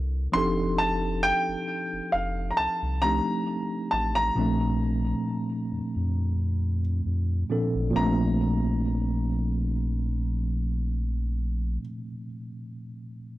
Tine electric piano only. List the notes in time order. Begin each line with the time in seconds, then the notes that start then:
Already playing: C3 C4 D4 E4 A4 A#4
0.32 F3 C4 D4 D#4 G4
0.37 A4
3.02 F3 A3 C4 D4 D#4 G4
4.35 A#2 F3 C4 D4
4.40 A3
7.50 A#2 F3 C4 D4 A4
7.91 A#2 F3
7.96 C4 D4
8.00 A3